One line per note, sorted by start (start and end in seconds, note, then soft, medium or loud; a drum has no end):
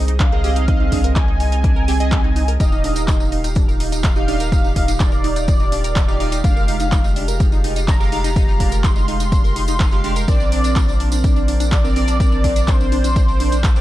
0.00 2.58 C2 medium
0.00 0.17 C4 medium
0.00 0.17 G#4 medium
0.00 0.17 D#5 loud
0.08 0.12 D#4 medium
0.08 closed hi-hat medium
0.20 0.29 D4 medium
0.20 1.07 F5 loud
0.20 kick loud
0.20 clap loud
0.20 closed hi-hat medium
0.32 0.41 C4 medium
0.32 0.41 G#4 medium
0.32 0.41 A#4 medium
0.32 0.41 D#5 loud
0.44 0.65 C4 medium
0.44 0.50 G4 loud
0.44 0.65 G#4 medium
0.44 0.65 D#5 loud
0.44 open hi-hat medium
0.56 0.62 D#4 medium
0.56 closed hi-hat medium
0.68 1.86 C4 medium
0.68 0.77 D#4 medium
0.68 1.86 G#4 medium
0.68 1.86 D#5 loud
0.68 kick loud
0.68 closed hi-hat medium
0.80 0.84 D#4 medium
0.92 1.01 D4 medium
0.92 kick medium
0.92 open hi-hat loud
1.04 1.13 A#4 medium
1.04 closed hi-hat medium
1.16 1.22 G4 loud
1.16 2.51 G#5 loud
1.16 kick loud
1.16 clap loud
1.16 closed hi-hat medium
1.28 1.34 D#4 medium
1.40 1.49 D#4 medium
1.40 open hi-hat medium
1.52 1.56 D#4 medium
1.52 closed hi-hat medium
1.64 1.73 D4 medium
1.64 kick loud
1.64 closed hi-hat medium
1.76 1.85 A#4 medium
1.88 1.98 C4 medium
1.88 1.92 G4 loud
1.88 1.98 G#4 medium
1.88 1.98 G#5 medium
1.88 open hi-hat loud
2.00 2.57 C4 medium
2.00 2.57 G#4 medium
2.00 2.06 D#5 medium
2.00 2.57 D#5 medium
2.00 closed hi-hat medium
2.12 2.21 G4 medium
2.12 kick loud
2.12 clap loud
2.12 closed hi-hat medium
2.24 2.30 D#4 loud
2.36 2.42 D#4 medium
2.36 open hi-hat medium
2.48 2.54 A#4 medium
2.48 closed hi-hat medium
2.60 6.42 D#1 medium
2.60 2.69 D#4 medium
2.60 4.01 D#4 loud
2.60 13.81 F4 medium
2.60 4.01 G4 medium
2.60 3.23 D#5 loud
2.60 4.01 F5 loud
2.60 13.81 F5 medium
2.60 kick loud
2.60 closed hi-hat medium
2.60 tambourine medium
2.72 2.76 D#4 medium
2.72 tambourine soft
2.84 2.93 D4 medium
2.84 open hi-hat loud
2.96 3.05 A#4 medium
2.96 closed hi-hat medium
2.96 tambourine medium
3.08 3.14 D#4 medium
3.08 kick loud
3.08 clap loud
3.08 closed hi-hat medium
3.08 tambourine medium
3.20 3.26 D#4 medium
3.20 tambourine soft
3.32 3.41 D#4 medium
3.32 open hi-hat medium
3.44 3.48 D#4 medium
3.44 closed hi-hat medium
3.44 tambourine medium
3.55 3.65 D4 medium
3.55 kick loud
3.55 closed hi-hat medium
3.55 tambourine medium
3.68 3.77 A#4 medium
3.68 tambourine soft
3.80 3.86 D#4 medium
3.80 open hi-hat loud
3.92 3.98 D#4 medium
3.92 closed hi-hat medium
3.92 tambourine medium
4.04 4.13 D#4 medium
4.04 4.91 F5 loud
4.04 kick loud
4.04 clap loud
4.04 closed hi-hat medium
4.04 tambourine medium
4.16 4.25 D#4 medium
4.16 4.20 D#4 medium
4.16 4.25 G4 medium
4.16 4.25 F5 loud
4.16 tambourine soft
4.28 4.37 D4 medium
4.28 4.49 D#4 medium
4.28 4.49 G4 medium
4.28 4.49 F5 loud
4.28 open hi-hat loud
4.40 4.49 A#4 medium
4.40 closed hi-hat medium
4.40 tambourine medium
4.52 5.93 D#4 medium
4.52 4.58 D#4 medium
4.52 5.93 G4 medium
4.52 5.93 F5 loud
4.52 kick loud
4.52 closed hi-hat medium
4.52 tambourine medium
4.64 4.70 D#4 medium
4.64 tambourine soft
4.76 4.85 D#4 medium
4.76 kick medium
4.76 open hi-hat loud
4.88 4.92 D#4 medium
4.88 closed hi-hat medium
4.88 tambourine medium
5.00 5.09 D4 medium
5.00 6.35 D5 loud
5.00 kick loud
5.00 clap loud
5.00 closed hi-hat medium
5.00 tambourine medium
5.12 5.21 A#4 medium
5.12 tambourine soft
5.24 5.30 D#4 medium
5.24 open hi-hat loud
5.36 5.42 D#4 medium
5.36 closed hi-hat medium
5.36 tambourine medium
5.48 5.57 D#4 medium
5.48 kick loud
5.48 closed hi-hat medium
5.48 tambourine medium
5.60 5.64 D#4 medium
5.60 tambourine soft
5.72 5.81 D4 medium
5.72 open hi-hat loud
5.84 5.93 A#4 medium
5.84 closed hi-hat medium
5.84 tambourine medium
5.96 6.02 D#4 medium
5.96 kick loud
5.96 clap loud
5.96 closed hi-hat medium
5.96 tambourine medium
6.08 6.14 D#4 medium
6.08 6.17 D#4 medium
6.08 6.17 G4 medium
6.08 6.17 F5 loud
6.08 tambourine soft
6.20 6.29 D#4 medium
6.20 6.41 D#4 medium
6.20 6.41 G4 medium
6.20 6.41 F5 loud
6.20 open hi-hat medium
6.32 6.36 D#4 medium
6.32 closed hi-hat medium
6.32 tambourine medium
6.44 10.26 F1 medium
6.44 7.85 G#3 medium
6.44 6.53 D4 medium
6.44 7.85 G4 medium
6.44 7.07 F5 loud
6.44 7.85 F5 loud
6.44 kick loud
6.44 closed hi-hat medium
6.44 tambourine medium
6.56 6.65 A#4 medium
6.56 tambourine soft
6.68 6.74 D#4 medium
6.68 open hi-hat loud
6.80 6.86 D#4 medium
6.80 closed hi-hat medium
6.80 tambourine medium
6.92 7.01 D#4 medium
6.92 kick loud
6.92 clap loud
6.92 closed hi-hat medium
6.92 tambourine medium
7.04 7.08 D#4 medium
7.04 tambourine soft
7.16 7.25 D4 medium
7.16 open hi-hat loud
7.28 7.37 A#4 medium
7.28 closed hi-hat medium
7.28 tambourine medium
7.40 7.46 D#4 medium
7.40 kick loud
7.40 closed hi-hat soft
7.40 tambourine medium
7.52 7.58 D#4 medium
7.52 tambourine soft
7.64 7.73 D#4 medium
7.64 open hi-hat loud
7.76 7.80 D#4 medium
7.76 closed hi-hat medium
7.76 tambourine medium
7.88 7.97 D4 medium
7.88 8.75 A#5 loud
7.88 kick loud
7.88 clap loud
7.88 closed hi-hat medium
7.88 tambourine medium
8.00 8.09 G#3 medium
8.00 8.09 G4 medium
8.00 8.09 A#4 medium
8.00 8.09 F5 loud
8.00 tambourine soft
8.12 8.33 G#3 medium
8.12 8.18 D#4 medium
8.12 8.33 G4 medium
8.12 8.33 F5 loud
8.12 open hi-hat loud
8.24 8.30 D#4 medium
8.24 closed hi-hat medium
8.24 tambourine medium
8.36 9.77 G#3 medium
8.36 8.45 D#4 medium
8.36 9.77 G4 medium
8.36 9.77 F5 loud
8.36 kick loud
8.36 closed hi-hat medium
8.36 tambourine medium
8.48 8.52 D#4 medium
8.48 tambourine soft
8.60 8.69 D4 medium
8.60 kick medium
8.60 open hi-hat loud
8.72 8.81 A#4 medium
8.72 closed hi-hat medium
8.72 tambourine medium
8.84 8.90 D#4 medium
8.84 10.19 C6 loud
8.84 kick loud
8.84 clap loud
8.84 closed hi-hat medium
8.84 tambourine medium
8.96 9.02 D#4 medium
8.96 tambourine soft
9.08 9.17 D#4 medium
9.08 open hi-hat loud
9.20 9.24 D#4 medium
9.20 closed hi-hat medium
9.20 tambourine medium
9.32 9.41 D4 medium
9.32 kick loud
9.32 closed hi-hat medium
9.32 tambourine medium
9.44 9.53 A#4 medium
9.44 tambourine soft
9.56 9.62 D#4 medium
9.56 open hi-hat loud
9.68 9.74 D#4 medium
9.68 closed hi-hat medium
9.68 tambourine medium
9.80 9.89 D#4 medium
9.80 kick loud
9.80 clap loud
9.80 closed hi-hat medium
9.80 tambourine medium
9.91 10.01 G#3 medium
9.91 9.96 D#4 medium
9.91 10.01 G4 medium
9.91 10.01 F5 loud
9.91 tambourine soft
10.04 10.25 G#3 medium
10.04 10.13 D4 medium
10.04 10.25 G4 medium
10.04 10.25 F5 loud
10.04 open hi-hat loud
10.16 10.25 A#4 medium
10.16 closed hi-hat medium
10.16 tambourine medium
10.28 13.81 A#1 medium
10.28 11.69 C4 medium
10.28 10.37 D4 medium
10.28 11.69 A#4 medium
10.28 11.69 D5 loud
10.28 10.91 D5 loud
10.28 kick loud
10.28 closed hi-hat medium
10.28 tambourine medium
10.40 10.44 D4 medium
10.40 tambourine soft
10.52 10.61 D4 medium
10.52 open hi-hat loud
10.64 10.70 D4 medium
10.64 closed hi-hat medium
10.64 tambourine medium
10.76 10.82 D4 medium
10.76 kick loud
10.76 clap loud
10.76 closed hi-hat soft
10.76 tambourine medium
10.88 10.94 D4 medium
10.88 tambourine soft
11.00 11.09 D4 medium
11.00 open hi-hat medium
11.12 11.16 D4 medium
11.12 closed hi-hat medium
11.12 tambourine medium
11.24 11.33 D4 medium
11.24 kick loud
11.24 closed hi-hat soft
11.24 tambourine medium
11.36 11.42 D4 medium
11.36 tambourine soft
11.48 11.54 D4 medium
11.48 open hi-hat loud
11.60 11.66 D4 medium
11.60 closed hi-hat medium
11.60 tambourine medium
11.72 11.81 D4 medium
11.72 12.70 D5 loud
11.72 kick loud
11.72 clap loud
11.72 closed hi-hat medium
11.72 tambourine medium
11.84 11.93 C4 medium
11.84 11.88 D4 medium
11.84 11.93 A#4 medium
11.84 11.93 D5 loud
11.84 tambourine soft
11.96 12.17 C4 medium
11.96 12.05 D4 medium
11.96 12.17 A#4 medium
11.96 12.17 D5 loud
11.96 open hi-hat medium
12.08 12.14 D4 medium
12.08 closed hi-hat medium
12.08 tambourine medium
12.20 13.61 C4 medium
12.20 12.26 D4 medium
12.20 13.61 A#4 medium
12.20 13.61 D5 loud
12.20 kick loud
12.20 closed hi-hat soft
12.20 tambourine medium
12.32 12.38 D4 medium
12.32 tambourine soft
12.44 12.53 D4 medium
12.44 kick medium
12.44 open hi-hat loud
12.56 12.60 D4 medium
12.56 closed hi-hat medium
12.56 tambourine medium
12.67 12.77 D4 medium
12.67 13.81 C5 loud
12.67 kick loud
12.67 clap loud
12.67 closed hi-hat medium
12.67 tambourine medium
12.80 12.86 D4 medium
12.80 tambourine soft
12.92 12.98 D4 medium
12.92 open hi-hat medium
13.04 13.10 D4 medium
13.04 closed hi-hat medium
13.04 tambourine medium
13.16 13.25 D4 medium
13.16 kick loud
13.16 closed hi-hat medium
13.16 tambourine medium
13.28 13.32 D4 medium
13.28 tambourine soft
13.40 13.49 D4 medium
13.40 open hi-hat loud
13.52 13.58 D4 medium
13.52 closed hi-hat medium
13.52 tambourine medium
13.64 13.70 D4 medium
13.64 kick loud
13.64 clap loud
13.64 closed hi-hat medium
13.64 tambourine medium
13.76 13.81 C4 medium
13.76 13.81 D4 medium
13.76 13.81 A#4 medium
13.76 13.81 D5 loud
13.76 tambourine soft